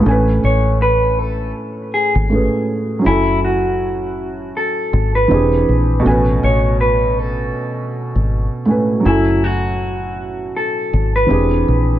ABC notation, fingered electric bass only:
X:1
M:4/4
L:1/16
Q:"Swing 16ths" 1/4=80
K:A
V:1 name="Fingered electric bass" clef=bass
A,,,2 A,,,6 z3 G,,,2 z3 | F,,,8 z2 G,,,2 E,,,2 ^A,,,2 | A,,,2 A,,,6 z3 G,,,2 z3 | F,,,8 z2 G,,,2 E,,,2 ^A,,,2 |]